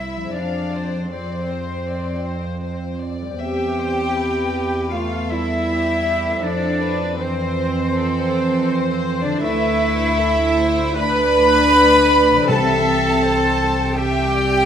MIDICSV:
0, 0, Header, 1, 10, 480
1, 0, Start_track
1, 0, Tempo, 763359
1, 216, Time_signature, 4, 2, 24, 8
1, 3574, Tempo, 750000
1, 6454, Tempo, 769231
1, 7894, Tempo, 740741
1, 9295, End_track
2, 0, Start_track
2, 0, Title_t, "Flute"
2, 0, Program_c, 0, 73
2, 0, Note_on_c, 0, 76, 62
2, 213, Note_on_c, 0, 74, 50
2, 222, Note_off_c, 0, 76, 0
2, 691, Note_off_c, 0, 74, 0
2, 694, Note_on_c, 0, 72, 56
2, 1870, Note_off_c, 0, 72, 0
2, 2134, Note_on_c, 0, 79, 73
2, 3091, Note_on_c, 0, 77, 70
2, 3100, Note_off_c, 0, 79, 0
2, 3331, Note_on_c, 0, 76, 75
2, 3340, Note_off_c, 0, 77, 0
2, 4052, Note_on_c, 0, 74, 73
2, 4062, Note_off_c, 0, 76, 0
2, 4528, Note_off_c, 0, 74, 0
2, 4532, Note_on_c, 0, 72, 74
2, 5845, Note_on_c, 0, 74, 78
2, 5855, Note_off_c, 0, 72, 0
2, 5963, Note_off_c, 0, 74, 0
2, 5967, Note_on_c, 0, 76, 85
2, 6747, Note_off_c, 0, 76, 0
2, 6940, Note_on_c, 0, 83, 115
2, 7864, Note_off_c, 0, 83, 0
2, 7891, Note_on_c, 0, 81, 87
2, 8848, Note_on_c, 0, 79, 107
2, 8858, Note_off_c, 0, 81, 0
2, 9295, Note_off_c, 0, 79, 0
2, 9295, End_track
3, 0, Start_track
3, 0, Title_t, "Violin section"
3, 0, Program_c, 1, 48
3, 0, Note_on_c, 1, 76, 61
3, 212, Note_on_c, 1, 74, 53
3, 215, Note_off_c, 1, 76, 0
3, 694, Note_on_c, 1, 72, 60
3, 695, Note_off_c, 1, 74, 0
3, 1870, Note_off_c, 1, 72, 0
3, 2133, Note_on_c, 1, 79, 74
3, 3069, Note_off_c, 1, 79, 0
3, 3095, Note_on_c, 1, 77, 63
3, 3328, Note_on_c, 1, 76, 84
3, 3336, Note_off_c, 1, 77, 0
3, 4054, Note_off_c, 1, 76, 0
3, 4054, Note_on_c, 1, 74, 69
3, 4529, Note_on_c, 1, 72, 86
3, 4537, Note_off_c, 1, 74, 0
3, 5826, Note_off_c, 1, 72, 0
3, 5841, Note_on_c, 1, 74, 78
3, 5957, Note_on_c, 1, 76, 97
3, 5967, Note_off_c, 1, 74, 0
3, 6919, Note_off_c, 1, 76, 0
3, 6941, Note_on_c, 1, 83, 111
3, 7881, Note_on_c, 1, 81, 90
3, 7890, Note_off_c, 1, 83, 0
3, 8823, Note_off_c, 1, 81, 0
3, 8838, Note_on_c, 1, 79, 101
3, 9295, Note_off_c, 1, 79, 0
3, 9295, End_track
4, 0, Start_track
4, 0, Title_t, "Violin section"
4, 0, Program_c, 2, 48
4, 0, Note_on_c, 2, 76, 53
4, 217, Note_on_c, 2, 77, 52
4, 220, Note_off_c, 2, 76, 0
4, 452, Note_off_c, 2, 77, 0
4, 458, Note_on_c, 2, 72, 50
4, 695, Note_on_c, 2, 74, 57
4, 698, Note_off_c, 2, 72, 0
4, 933, Note_off_c, 2, 74, 0
4, 939, Note_on_c, 2, 72, 50
4, 1175, Note_on_c, 2, 74, 51
4, 1182, Note_off_c, 2, 72, 0
4, 1414, Note_on_c, 2, 72, 54
4, 1419, Note_off_c, 2, 74, 0
4, 1639, Note_off_c, 2, 72, 0
4, 1646, Note_on_c, 2, 72, 50
4, 1884, Note_off_c, 2, 72, 0
4, 1888, Note_on_c, 2, 74, 55
4, 2131, Note_off_c, 2, 74, 0
4, 2132, Note_on_c, 2, 76, 62
4, 2373, Note_off_c, 2, 76, 0
4, 2376, Note_on_c, 2, 72, 59
4, 2614, Note_off_c, 2, 72, 0
4, 2617, Note_on_c, 2, 71, 60
4, 3096, Note_off_c, 2, 71, 0
4, 3097, Note_on_c, 2, 69, 62
4, 3576, Note_off_c, 2, 69, 0
4, 3582, Note_on_c, 2, 67, 54
4, 4061, Note_on_c, 2, 69, 67
4, 4062, Note_off_c, 2, 67, 0
4, 4295, Note_off_c, 2, 69, 0
4, 4298, Note_on_c, 2, 71, 67
4, 4534, Note_on_c, 2, 72, 74
4, 4539, Note_off_c, 2, 71, 0
4, 5020, Note_off_c, 2, 72, 0
4, 5025, Note_on_c, 2, 69, 76
4, 5498, Note_on_c, 2, 72, 79
4, 5502, Note_off_c, 2, 69, 0
4, 5968, Note_on_c, 2, 71, 80
4, 5973, Note_off_c, 2, 72, 0
4, 6440, Note_off_c, 2, 71, 0
4, 6451, Note_on_c, 2, 69, 78
4, 6697, Note_off_c, 2, 69, 0
4, 6699, Note_on_c, 2, 72, 77
4, 6947, Note_off_c, 2, 72, 0
4, 6951, Note_on_c, 2, 74, 76
4, 7892, Note_on_c, 2, 76, 90
4, 7894, Note_off_c, 2, 74, 0
4, 8371, Note_off_c, 2, 76, 0
4, 8375, Note_on_c, 2, 72, 85
4, 8850, Note_off_c, 2, 72, 0
4, 8857, Note_on_c, 2, 76, 81
4, 9089, Note_on_c, 2, 74, 83
4, 9090, Note_off_c, 2, 76, 0
4, 9295, Note_off_c, 2, 74, 0
4, 9295, End_track
5, 0, Start_track
5, 0, Title_t, "Cello section"
5, 0, Program_c, 3, 48
5, 0, Note_on_c, 3, 64, 69
5, 216, Note_on_c, 3, 62, 61
5, 218, Note_off_c, 3, 64, 0
5, 697, Note_off_c, 3, 62, 0
5, 699, Note_on_c, 3, 60, 65
5, 1872, Note_off_c, 3, 60, 0
5, 2142, Note_on_c, 3, 67, 83
5, 3073, Note_off_c, 3, 67, 0
5, 3103, Note_on_c, 3, 65, 73
5, 3339, Note_off_c, 3, 65, 0
5, 3344, Note_on_c, 3, 64, 83
5, 4058, Note_on_c, 3, 62, 93
5, 4062, Note_off_c, 3, 64, 0
5, 4531, Note_on_c, 3, 60, 90
5, 4539, Note_off_c, 3, 62, 0
5, 5826, Note_off_c, 3, 60, 0
5, 5849, Note_on_c, 3, 62, 88
5, 5964, Note_on_c, 3, 64, 111
5, 5971, Note_off_c, 3, 62, 0
5, 6942, Note_off_c, 3, 64, 0
5, 6942, Note_on_c, 3, 71, 123
5, 7871, Note_off_c, 3, 71, 0
5, 7889, Note_on_c, 3, 69, 105
5, 8845, Note_on_c, 3, 67, 108
5, 8847, Note_off_c, 3, 69, 0
5, 9295, Note_off_c, 3, 67, 0
5, 9295, End_track
6, 0, Start_track
6, 0, Title_t, "Viola section"
6, 0, Program_c, 4, 48
6, 0, Note_on_c, 4, 64, 54
6, 208, Note_on_c, 4, 62, 54
6, 212, Note_off_c, 4, 64, 0
6, 683, Note_off_c, 4, 62, 0
6, 690, Note_on_c, 4, 60, 55
6, 1892, Note_off_c, 4, 60, 0
6, 2132, Note_on_c, 4, 67, 76
6, 3068, Note_off_c, 4, 67, 0
6, 3094, Note_on_c, 4, 65, 73
6, 3334, Note_on_c, 4, 64, 80
6, 3335, Note_off_c, 4, 65, 0
6, 4054, Note_on_c, 4, 62, 72
6, 4057, Note_off_c, 4, 64, 0
6, 4528, Note_on_c, 4, 60, 78
6, 4537, Note_off_c, 4, 62, 0
6, 5843, Note_on_c, 4, 62, 76
6, 5851, Note_off_c, 4, 60, 0
6, 5959, Note_on_c, 4, 64, 89
6, 5968, Note_off_c, 4, 62, 0
6, 6920, Note_off_c, 4, 64, 0
6, 6944, Note_on_c, 4, 71, 124
6, 7872, Note_off_c, 4, 71, 0
6, 7885, Note_on_c, 4, 69, 94
6, 8844, Note_off_c, 4, 69, 0
6, 8846, Note_on_c, 4, 67, 100
6, 9295, Note_off_c, 4, 67, 0
6, 9295, End_track
7, 0, Start_track
7, 0, Title_t, "Harp"
7, 0, Program_c, 5, 46
7, 0, Note_on_c, 5, 48, 38
7, 0, Note_on_c, 5, 64, 30
7, 0, Note_on_c, 5, 67, 34
7, 0, Note_on_c, 5, 72, 33
7, 102, Note_on_c, 5, 53, 42
7, 130, Note_on_c, 5, 60, 37
7, 160, Note_on_c, 5, 68, 35
7, 179, Note_off_c, 5, 48, 0
7, 194, Note_off_c, 5, 64, 0
7, 208, Note_off_c, 5, 67, 0
7, 687, Note_off_c, 5, 72, 0
7, 2023, Note_on_c, 5, 55, 47
7, 2042, Note_off_c, 5, 60, 0
7, 2050, Note_on_c, 5, 60, 41
7, 2079, Note_on_c, 5, 67, 42
7, 2097, Note_off_c, 5, 53, 0
7, 2125, Note_off_c, 5, 68, 0
7, 3944, Note_on_c, 5, 57, 59
7, 3963, Note_off_c, 5, 60, 0
7, 3971, Note_on_c, 5, 60, 47
7, 4001, Note_on_c, 5, 64, 46
7, 4020, Note_off_c, 5, 55, 0
7, 4029, Note_on_c, 5, 69, 48
7, 4049, Note_off_c, 5, 67, 0
7, 5851, Note_on_c, 5, 50, 66
7, 5880, Note_on_c, 5, 62, 50
7, 5902, Note_off_c, 5, 64, 0
7, 5910, Note_on_c, 5, 64, 53
7, 5930, Note_off_c, 5, 69, 0
7, 5936, Note_off_c, 5, 57, 0
7, 5938, Note_on_c, 5, 69, 53
7, 5950, Note_off_c, 5, 60, 0
7, 7778, Note_on_c, 5, 48, 67
7, 7805, Note_on_c, 5, 52, 57
7, 7834, Note_on_c, 5, 67, 49
7, 7851, Note_off_c, 5, 50, 0
7, 7855, Note_off_c, 5, 69, 0
7, 7863, Note_on_c, 5, 69, 59
7, 7865, Note_off_c, 5, 62, 0
7, 8375, Note_off_c, 5, 64, 0
7, 9295, Note_off_c, 5, 48, 0
7, 9295, Note_off_c, 5, 52, 0
7, 9295, Note_off_c, 5, 67, 0
7, 9295, Note_off_c, 5, 69, 0
7, 9295, End_track
8, 0, Start_track
8, 0, Title_t, "Clarinet"
8, 0, Program_c, 6, 71
8, 0, Note_on_c, 6, 55, 55
8, 207, Note_on_c, 6, 53, 63
8, 216, Note_off_c, 6, 55, 0
8, 681, Note_off_c, 6, 53, 0
8, 685, Note_on_c, 6, 53, 52
8, 1865, Note_off_c, 6, 53, 0
8, 2128, Note_on_c, 6, 60, 81
8, 3094, Note_on_c, 6, 57, 70
8, 3103, Note_off_c, 6, 60, 0
8, 3337, Note_on_c, 6, 55, 66
8, 3346, Note_off_c, 6, 57, 0
8, 4046, Note_off_c, 6, 55, 0
8, 4050, Note_on_c, 6, 53, 79
8, 4531, Note_on_c, 6, 52, 77
8, 4541, Note_off_c, 6, 53, 0
8, 5855, Note_on_c, 6, 53, 77
8, 5865, Note_off_c, 6, 52, 0
8, 5964, Note_on_c, 6, 57, 100
8, 5974, Note_off_c, 6, 53, 0
8, 6762, Note_off_c, 6, 57, 0
8, 6943, Note_on_c, 6, 62, 98
8, 7865, Note_off_c, 6, 62, 0
8, 7885, Note_on_c, 6, 60, 100
8, 8825, Note_off_c, 6, 60, 0
8, 8850, Note_on_c, 6, 60, 98
8, 9295, Note_off_c, 6, 60, 0
8, 9295, End_track
9, 0, Start_track
9, 0, Title_t, "Timpani"
9, 0, Program_c, 7, 47
9, 7891, Note_on_c, 7, 48, 84
9, 8582, Note_off_c, 7, 48, 0
9, 9295, End_track
10, 0, Start_track
10, 0, Title_t, "Double bass section"
10, 0, Program_c, 8, 48
10, 0, Note_on_c, 8, 36, 46
10, 188, Note_off_c, 8, 36, 0
10, 210, Note_on_c, 8, 41, 56
10, 2106, Note_off_c, 8, 41, 0
10, 2128, Note_on_c, 8, 40, 54
10, 4029, Note_off_c, 8, 40, 0
10, 4053, Note_on_c, 8, 41, 66
10, 5946, Note_off_c, 8, 41, 0
10, 5967, Note_on_c, 8, 38, 79
10, 7864, Note_off_c, 8, 38, 0
10, 7890, Note_on_c, 8, 36, 79
10, 9295, Note_off_c, 8, 36, 0
10, 9295, End_track
0, 0, End_of_file